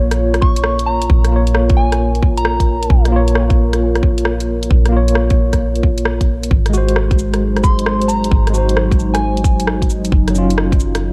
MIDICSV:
0, 0, Header, 1, 6, 480
1, 0, Start_track
1, 0, Key_signature, -5, "minor"
1, 0, Tempo, 451128
1, 1166, Time_signature, 4, 2, 24, 8
1, 11840, End_track
2, 0, Start_track
2, 0, Title_t, "Synth bell"
2, 0, Program_c, 0, 98
2, 442, Note_on_c, 0, 85, 85
2, 908, Note_off_c, 0, 85, 0
2, 919, Note_on_c, 0, 82, 91
2, 1179, Note_off_c, 0, 82, 0
2, 1880, Note_on_c, 0, 80, 93
2, 2139, Note_off_c, 0, 80, 0
2, 2527, Note_on_c, 0, 82, 97
2, 3183, Note_off_c, 0, 82, 0
2, 8124, Note_on_c, 0, 84, 86
2, 8589, Note_off_c, 0, 84, 0
2, 8598, Note_on_c, 0, 82, 85
2, 8858, Note_off_c, 0, 82, 0
2, 9721, Note_on_c, 0, 80, 88
2, 10379, Note_off_c, 0, 80, 0
2, 11840, End_track
3, 0, Start_track
3, 0, Title_t, "Analog synth pad"
3, 0, Program_c, 1, 89
3, 0, Note_on_c, 1, 63, 69
3, 0, Note_on_c, 1, 65, 71
3, 0, Note_on_c, 1, 70, 88
3, 0, Note_on_c, 1, 73, 82
3, 714, Note_off_c, 1, 63, 0
3, 6915, Note_on_c, 1, 56, 92
3, 6922, Note_off_c, 1, 65, 0
3, 6929, Note_off_c, 1, 73, 0
3, 7144, Note_on_c, 1, 54, 72
3, 7149, Note_on_c, 1, 63, 85
3, 7616, Note_on_c, 1, 72, 91
3, 10760, Note_off_c, 1, 72, 0
3, 10761, Note_off_c, 1, 56, 0
3, 11149, Note_on_c, 1, 73, 76
3, 11529, Note_off_c, 1, 70, 0
3, 11840, Note_off_c, 1, 54, 0
3, 11840, Note_off_c, 1, 63, 0
3, 11840, Note_off_c, 1, 73, 0
3, 11840, End_track
4, 0, Start_track
4, 0, Title_t, "Tine electric piano"
4, 0, Program_c, 2, 4
4, 0, Note_on_c, 2, 58, 92
4, 0, Note_on_c, 2, 65, 81
4, 0, Note_on_c, 2, 73, 102
4, 1349, Note_off_c, 2, 58, 0
4, 1361, Note_on_c, 2, 58, 80
4, 1387, Note_off_c, 2, 65, 0
4, 1407, Note_off_c, 2, 73, 0
4, 1407, Note_on_c, 2, 65, 78
4, 1448, Note_on_c, 2, 73, 89
4, 3266, Note_off_c, 2, 58, 0
4, 3278, Note_on_c, 2, 58, 88
4, 3307, Note_off_c, 2, 65, 0
4, 3325, Note_on_c, 2, 65, 85
4, 3327, Note_off_c, 2, 73, 0
4, 3365, Note_on_c, 2, 73, 105
4, 5187, Note_off_c, 2, 58, 0
4, 5200, Note_on_c, 2, 58, 85
4, 5226, Note_off_c, 2, 65, 0
4, 5240, Note_on_c, 2, 65, 78
4, 5246, Note_off_c, 2, 73, 0
4, 5284, Note_on_c, 2, 73, 91
4, 6893, Note_off_c, 2, 58, 0
4, 6913, Note_off_c, 2, 65, 0
4, 6935, Note_off_c, 2, 73, 0
4, 7124, Note_on_c, 2, 56, 91
4, 7167, Note_on_c, 2, 66, 86
4, 7210, Note_on_c, 2, 72, 104
4, 9027, Note_off_c, 2, 56, 0
4, 9039, Note_on_c, 2, 56, 83
4, 9067, Note_off_c, 2, 66, 0
4, 9081, Note_on_c, 2, 66, 76
4, 9088, Note_off_c, 2, 72, 0
4, 9126, Note_on_c, 2, 72, 88
4, 10733, Note_off_c, 2, 56, 0
4, 10754, Note_off_c, 2, 66, 0
4, 10776, Note_off_c, 2, 72, 0
4, 10959, Note_on_c, 2, 54, 90
4, 11004, Note_on_c, 2, 61, 84
4, 11047, Note_on_c, 2, 65, 100
4, 11840, Note_off_c, 2, 54, 0
4, 11840, Note_off_c, 2, 61, 0
4, 11840, Note_off_c, 2, 65, 0
4, 11840, End_track
5, 0, Start_track
5, 0, Title_t, "808-style bass"
5, 0, Program_c, 3, 38
5, 0, Note_on_c, 3, 34, 92
5, 1149, Note_off_c, 3, 34, 0
5, 1169, Note_on_c, 3, 34, 90
5, 3071, Note_off_c, 3, 34, 0
5, 3086, Note_on_c, 3, 34, 89
5, 4990, Note_off_c, 3, 34, 0
5, 5007, Note_on_c, 3, 34, 88
5, 6910, Note_off_c, 3, 34, 0
5, 6924, Note_on_c, 3, 32, 87
5, 8829, Note_off_c, 3, 32, 0
5, 8845, Note_on_c, 3, 32, 84
5, 10749, Note_off_c, 3, 32, 0
5, 10767, Note_on_c, 3, 30, 94
5, 11840, Note_off_c, 3, 30, 0
5, 11840, End_track
6, 0, Start_track
6, 0, Title_t, "Drums"
6, 121, Note_on_c, 9, 37, 65
6, 121, Note_on_c, 9, 42, 55
6, 227, Note_off_c, 9, 37, 0
6, 227, Note_off_c, 9, 42, 0
6, 363, Note_on_c, 9, 37, 68
6, 363, Note_on_c, 9, 42, 31
6, 448, Note_on_c, 9, 36, 102
6, 469, Note_off_c, 9, 37, 0
6, 469, Note_off_c, 9, 42, 0
6, 554, Note_off_c, 9, 36, 0
6, 600, Note_on_c, 9, 42, 55
6, 677, Note_on_c, 9, 37, 102
6, 707, Note_off_c, 9, 42, 0
6, 784, Note_off_c, 9, 37, 0
6, 843, Note_on_c, 9, 42, 47
6, 950, Note_off_c, 9, 42, 0
6, 1082, Note_on_c, 9, 42, 57
6, 1168, Note_on_c, 9, 36, 116
6, 1189, Note_off_c, 9, 42, 0
6, 1274, Note_off_c, 9, 36, 0
6, 1325, Note_on_c, 9, 37, 49
6, 1325, Note_on_c, 9, 42, 46
6, 1432, Note_off_c, 9, 37, 0
6, 1432, Note_off_c, 9, 42, 0
6, 1564, Note_on_c, 9, 42, 52
6, 1645, Note_on_c, 9, 37, 107
6, 1671, Note_off_c, 9, 42, 0
6, 1751, Note_off_c, 9, 37, 0
6, 1804, Note_on_c, 9, 42, 33
6, 1807, Note_on_c, 9, 36, 109
6, 1910, Note_off_c, 9, 42, 0
6, 1913, Note_off_c, 9, 36, 0
6, 2046, Note_on_c, 9, 37, 64
6, 2046, Note_on_c, 9, 42, 56
6, 2153, Note_off_c, 9, 37, 0
6, 2153, Note_off_c, 9, 42, 0
6, 2288, Note_on_c, 9, 42, 33
6, 2368, Note_on_c, 9, 36, 105
6, 2394, Note_off_c, 9, 42, 0
6, 2474, Note_off_c, 9, 36, 0
6, 2527, Note_on_c, 9, 42, 54
6, 2607, Note_on_c, 9, 37, 109
6, 2634, Note_off_c, 9, 42, 0
6, 2713, Note_off_c, 9, 37, 0
6, 2767, Note_on_c, 9, 36, 60
6, 2769, Note_on_c, 9, 42, 46
6, 2873, Note_off_c, 9, 36, 0
6, 2875, Note_off_c, 9, 42, 0
6, 3008, Note_on_c, 9, 42, 57
6, 3087, Note_on_c, 9, 36, 123
6, 3115, Note_off_c, 9, 42, 0
6, 3193, Note_off_c, 9, 36, 0
6, 3250, Note_on_c, 9, 37, 49
6, 3250, Note_on_c, 9, 42, 43
6, 3356, Note_off_c, 9, 37, 0
6, 3356, Note_off_c, 9, 42, 0
6, 3489, Note_on_c, 9, 42, 54
6, 3569, Note_on_c, 9, 37, 112
6, 3595, Note_off_c, 9, 42, 0
6, 3676, Note_off_c, 9, 37, 0
6, 3726, Note_on_c, 9, 36, 107
6, 3730, Note_on_c, 9, 42, 32
6, 3833, Note_off_c, 9, 36, 0
6, 3837, Note_off_c, 9, 42, 0
6, 3972, Note_on_c, 9, 37, 61
6, 3972, Note_on_c, 9, 42, 52
6, 4078, Note_off_c, 9, 37, 0
6, 4078, Note_off_c, 9, 42, 0
6, 4208, Note_on_c, 9, 37, 63
6, 4208, Note_on_c, 9, 42, 30
6, 4287, Note_on_c, 9, 36, 104
6, 4315, Note_off_c, 9, 37, 0
6, 4315, Note_off_c, 9, 42, 0
6, 4393, Note_off_c, 9, 36, 0
6, 4447, Note_on_c, 9, 42, 53
6, 4523, Note_on_c, 9, 37, 106
6, 4553, Note_off_c, 9, 42, 0
6, 4630, Note_off_c, 9, 37, 0
6, 4686, Note_on_c, 9, 42, 49
6, 4792, Note_off_c, 9, 42, 0
6, 4924, Note_on_c, 9, 42, 56
6, 5007, Note_on_c, 9, 36, 114
6, 5030, Note_off_c, 9, 42, 0
6, 5113, Note_off_c, 9, 36, 0
6, 5166, Note_on_c, 9, 37, 49
6, 5166, Note_on_c, 9, 42, 44
6, 5273, Note_off_c, 9, 37, 0
6, 5273, Note_off_c, 9, 42, 0
6, 5406, Note_on_c, 9, 42, 52
6, 5483, Note_on_c, 9, 37, 105
6, 5513, Note_off_c, 9, 42, 0
6, 5589, Note_off_c, 9, 37, 0
6, 5641, Note_on_c, 9, 42, 31
6, 5645, Note_on_c, 9, 36, 107
6, 5748, Note_off_c, 9, 42, 0
6, 5751, Note_off_c, 9, 36, 0
6, 5884, Note_on_c, 9, 37, 61
6, 5884, Note_on_c, 9, 42, 53
6, 5885, Note_on_c, 9, 36, 63
6, 5990, Note_off_c, 9, 37, 0
6, 5990, Note_off_c, 9, 42, 0
6, 5992, Note_off_c, 9, 36, 0
6, 6123, Note_on_c, 9, 42, 29
6, 6206, Note_on_c, 9, 36, 104
6, 6229, Note_off_c, 9, 42, 0
6, 6312, Note_off_c, 9, 36, 0
6, 6359, Note_on_c, 9, 42, 51
6, 6441, Note_on_c, 9, 37, 104
6, 6466, Note_off_c, 9, 42, 0
6, 6547, Note_off_c, 9, 37, 0
6, 6605, Note_on_c, 9, 36, 59
6, 6606, Note_on_c, 9, 42, 43
6, 6712, Note_off_c, 9, 36, 0
6, 6712, Note_off_c, 9, 42, 0
6, 6846, Note_on_c, 9, 42, 56
6, 6926, Note_on_c, 9, 36, 117
6, 6952, Note_off_c, 9, 42, 0
6, 7033, Note_off_c, 9, 36, 0
6, 7084, Note_on_c, 9, 37, 47
6, 7084, Note_on_c, 9, 42, 43
6, 7168, Note_on_c, 9, 69, 74
6, 7191, Note_off_c, 9, 37, 0
6, 7191, Note_off_c, 9, 42, 0
6, 7274, Note_off_c, 9, 69, 0
6, 7326, Note_on_c, 9, 42, 52
6, 7407, Note_on_c, 9, 37, 101
6, 7433, Note_off_c, 9, 42, 0
6, 7513, Note_off_c, 9, 37, 0
6, 7565, Note_on_c, 9, 36, 96
6, 7569, Note_on_c, 9, 42, 30
6, 7648, Note_on_c, 9, 69, 74
6, 7671, Note_off_c, 9, 36, 0
6, 7675, Note_off_c, 9, 42, 0
6, 7754, Note_off_c, 9, 69, 0
6, 7806, Note_on_c, 9, 37, 59
6, 7806, Note_on_c, 9, 42, 49
6, 7913, Note_off_c, 9, 37, 0
6, 7913, Note_off_c, 9, 42, 0
6, 8050, Note_on_c, 9, 37, 61
6, 8050, Note_on_c, 9, 42, 29
6, 8126, Note_on_c, 9, 36, 108
6, 8128, Note_on_c, 9, 69, 77
6, 8156, Note_off_c, 9, 37, 0
6, 8156, Note_off_c, 9, 42, 0
6, 8233, Note_off_c, 9, 36, 0
6, 8235, Note_off_c, 9, 69, 0
6, 8287, Note_on_c, 9, 42, 52
6, 8366, Note_on_c, 9, 37, 106
6, 8393, Note_off_c, 9, 42, 0
6, 8473, Note_off_c, 9, 37, 0
6, 8528, Note_on_c, 9, 42, 41
6, 8608, Note_on_c, 9, 69, 75
6, 8634, Note_off_c, 9, 42, 0
6, 8714, Note_off_c, 9, 69, 0
6, 8769, Note_on_c, 9, 42, 53
6, 8846, Note_on_c, 9, 36, 114
6, 8875, Note_off_c, 9, 42, 0
6, 8952, Note_off_c, 9, 36, 0
6, 9012, Note_on_c, 9, 37, 49
6, 9012, Note_on_c, 9, 42, 44
6, 9090, Note_on_c, 9, 69, 77
6, 9118, Note_off_c, 9, 37, 0
6, 9118, Note_off_c, 9, 42, 0
6, 9196, Note_off_c, 9, 69, 0
6, 9247, Note_on_c, 9, 42, 52
6, 9327, Note_on_c, 9, 37, 101
6, 9353, Note_off_c, 9, 42, 0
6, 9433, Note_off_c, 9, 37, 0
6, 9485, Note_on_c, 9, 36, 98
6, 9492, Note_on_c, 9, 42, 29
6, 9570, Note_on_c, 9, 69, 70
6, 9591, Note_off_c, 9, 36, 0
6, 9599, Note_off_c, 9, 42, 0
6, 9676, Note_off_c, 9, 69, 0
6, 9731, Note_on_c, 9, 37, 65
6, 9731, Note_on_c, 9, 42, 51
6, 9838, Note_off_c, 9, 37, 0
6, 9838, Note_off_c, 9, 42, 0
6, 9971, Note_on_c, 9, 42, 29
6, 10047, Note_on_c, 9, 36, 102
6, 10051, Note_on_c, 9, 69, 77
6, 10077, Note_off_c, 9, 42, 0
6, 10153, Note_off_c, 9, 36, 0
6, 10158, Note_off_c, 9, 69, 0
6, 10211, Note_on_c, 9, 42, 53
6, 10293, Note_on_c, 9, 37, 103
6, 10317, Note_off_c, 9, 42, 0
6, 10399, Note_off_c, 9, 37, 0
6, 10446, Note_on_c, 9, 36, 59
6, 10452, Note_on_c, 9, 42, 43
6, 10533, Note_on_c, 9, 69, 73
6, 10553, Note_off_c, 9, 36, 0
6, 10558, Note_off_c, 9, 42, 0
6, 10639, Note_off_c, 9, 69, 0
6, 10690, Note_on_c, 9, 42, 52
6, 10690, Note_on_c, 9, 69, 43
6, 10768, Note_on_c, 9, 36, 111
6, 10796, Note_off_c, 9, 42, 0
6, 10796, Note_off_c, 9, 69, 0
6, 10875, Note_off_c, 9, 36, 0
6, 10933, Note_on_c, 9, 37, 51
6, 10933, Note_on_c, 9, 42, 42
6, 11014, Note_on_c, 9, 69, 76
6, 11040, Note_off_c, 9, 37, 0
6, 11040, Note_off_c, 9, 42, 0
6, 11120, Note_off_c, 9, 69, 0
6, 11175, Note_on_c, 9, 42, 50
6, 11254, Note_on_c, 9, 37, 102
6, 11281, Note_off_c, 9, 42, 0
6, 11360, Note_off_c, 9, 37, 0
6, 11408, Note_on_c, 9, 36, 97
6, 11414, Note_on_c, 9, 42, 29
6, 11490, Note_on_c, 9, 69, 77
6, 11514, Note_off_c, 9, 36, 0
6, 11520, Note_off_c, 9, 42, 0
6, 11596, Note_off_c, 9, 69, 0
6, 11650, Note_on_c, 9, 37, 65
6, 11650, Note_on_c, 9, 42, 53
6, 11756, Note_off_c, 9, 37, 0
6, 11756, Note_off_c, 9, 42, 0
6, 11840, End_track
0, 0, End_of_file